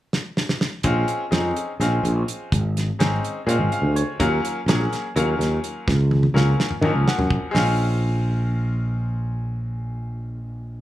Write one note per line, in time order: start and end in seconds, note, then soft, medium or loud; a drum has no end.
0.13 snare medium
0.37 snare medium
0.49 snare medium
0.61 snare medium
0.83 1.03 A#1 medium
0.83 1.23 G#3 medium
0.83 1.23 C4 medium
0.83 1.23 C#4 medium
0.83 1.24 F4 medium
0.83 kick loud
0.83 closed hi-hat medium
1.08 closed hi-hat medium
1.31 1.51 F2 medium
1.31 1.70 G#3 medium
1.31 1.71 C4 medium
1.31 1.71 C#4 medium
1.31 1.71 D#4 medium
1.31 snare medium
1.31 closed hi-hat medium
1.56 closed hi-hat medium
1.80 1.99 A#1 medium
1.80 2.58 G#3 medium
1.80 2.58 C4 medium
1.80 2.58 C#4 medium
1.80 2.58 F4 medium
1.80 snare soft
1.80 closed hi-hat medium
2.03 2.23 A#1 medium
2.03 closed hi-hat medium
2.28 closed hi-hat medium
2.52 2.90 G#1 medium
2.52 kick loud
2.52 closed hi-hat medium
2.77 snare soft
2.77 closed hi-hat medium
2.99 3.19 G#1 medium
2.99 3.38 G#3 medium
2.99 3.38 C4 medium
2.99 3.39 C#4 medium
2.99 3.39 D#4 medium
2.99 snare loud
2.99 closed hi-hat medium
3.24 closed hi-hat medium
3.46 3.57 A#2 medium
3.46 4.19 G#3 medium
3.46 4.19 C4 medium
3.46 4.20 C#4 medium
3.46 4.20 F4 medium
3.46 closed hi-hat medium
3.59 3.69 G#1 medium
3.72 3.94 F5 medium
3.72 closed hi-hat soft
3.82 4.02 D2 medium
3.96 4.18 C#5 medium
3.96 closed hi-hat medium
4.20 4.39 D#2 loud
4.20 4.58 F#3 medium
4.20 4.59 A#3 medium
4.20 4.59 C#4 medium
4.20 4.59 F4 medium
4.20 kick loud
4.20 closed hi-hat medium
4.45 closed hi-hat medium
4.66 4.86 A#1 medium
4.66 5.06 F#3 medium
4.66 5.06 A#3 medium
4.66 5.07 C#4 medium
4.66 5.07 G#4 medium
4.66 snare loud
4.66 closed hi-hat medium
4.93 snare soft
4.93 closed hi-hat medium
5.16 5.35 D#2 loud
5.16 5.93 F#3 medium
5.16 5.93 A#3 medium
5.16 5.94 C#4 medium
5.16 5.94 F4 medium
5.16 closed hi-hat medium
5.39 5.58 D#2 medium
5.39 snare soft
5.39 closed hi-hat medium
5.64 closed hi-hat medium
5.88 6.26 C#2 medium
5.88 kick loud
5.88 snare medium
6.11 high tom medium
6.23 high tom medium
6.34 6.53 C#2 medium
6.34 6.73 F#3 medium
6.34 6.73 A#3 medium
6.34 6.74 C#4 medium
6.34 6.74 F4 medium
6.34 snare medium
6.60 snare medium
6.71 mid tom medium
6.82 6.91 D#3 loud
6.82 7.55 F3 medium
6.82 7.54 F#3 medium
6.82 7.54 A#3 medium
6.82 7.54 C#4 medium
6.82 mid tom medium
6.94 7.04 C#2 medium
7.08 7.51 F#5 medium
7.08 snare medium
7.18 7.37 F#2 medium
7.18 floor tom medium
7.30 kick loud
7.51 10.81 A#1 medium
7.51 10.79 G#3 medium
7.51 10.81 C4 medium
7.51 open hi-hat medium
7.55 10.81 C#4 medium
7.55 10.81 F4 medium
7.55 snare medium